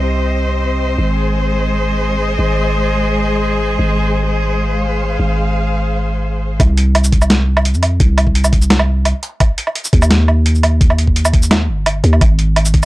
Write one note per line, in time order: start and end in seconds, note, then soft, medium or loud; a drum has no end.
0.00 0.97 C2 medium
0.00 0.98 C3 medium
0.00 2.14 C4 medium
0.00 6.60 C5 medium
0.00 0.99 D#5 medium
0.98 2.37 G#1 medium
0.98 6.60 G#3 medium
1.10 6.60 G#4 medium
1.31 4.70 D#5 medium
2.39 3.77 G#1 medium
3.79 5.18 G#1 medium
4.60 6.60 F5 medium
5.19 6.58 G#1 medium
6.60 7.76 C2 loud
6.60 kick loud
6.60 closed hi-hat medium
6.60 low woodblock medium
6.77 closed hi-hat medium
6.95 closed hi-hat medium
6.95 low woodblock medium
7.04 shaker medium
7.12 kick loud
7.12 closed hi-hat medium
7.22 low woodblock medium
7.22 shaker medium
7.30 snare loud
7.30 closed hi-hat medium
7.57 low woodblock medium
7.65 closed hi-hat medium
7.74 7.99 F2 medium
7.74 shaker soft
7.83 closed hi-hat medium
7.83 low woodblock medium
8.00 9.13 C2 loud
8.00 kick loud
8.00 closed hi-hat medium
8.18 closed hi-hat medium
8.18 low woodblock medium
8.27 kick medium
8.35 closed hi-hat medium
8.44 low woodblock medium
8.44 shaker medium
8.53 kick loud
8.53 closed hi-hat medium
8.62 shaker medium
8.70 snare loud
8.70 closed hi-hat medium
8.79 low woodblock medium
9.05 closed hi-hat medium
9.05 low woodblock medium
9.23 closed hi-hat medium
9.40 kick loud
9.40 closed hi-hat medium
9.40 low woodblock medium
9.58 closed hi-hat medium
9.67 low woodblock soft
9.76 closed hi-hat medium
9.85 shaker medium
9.93 11.70 D#2 loud
9.93 kick loud
9.93 closed hi-hat medium
10.02 low woodblock medium
10.02 shaker medium
10.11 snare loud
10.11 closed hi-hat medium
10.28 low woodblock medium
10.46 closed hi-hat medium
10.55 shaker soft
10.63 closed hi-hat medium
10.63 low woodblock medium
10.81 kick loud
10.81 closed hi-hat medium
10.90 low woodblock medium
10.98 closed hi-hat medium
11.07 kick medium
11.16 closed hi-hat medium
11.25 low woodblock medium
11.25 shaker medium
11.33 kick loud
11.33 closed hi-hat medium
11.43 shaker medium
11.51 snare loud
11.51 closed hi-hat medium
11.51 low woodblock medium
11.69 12.03 G1 loud
11.86 closed hi-hat medium
11.86 low woodblock medium
12.04 12.20 D#2 loud
12.04 closed hi-hat medium
12.13 low woodblock soft
12.21 12.85 G#1 loud
12.21 kick loud
12.21 closed hi-hat medium
12.21 low woodblock soft
12.39 closed hi-hat medium
12.56 closed hi-hat medium
12.56 low woodblock medium
12.65 shaker medium
12.74 kick loud
12.74 closed hi-hat medium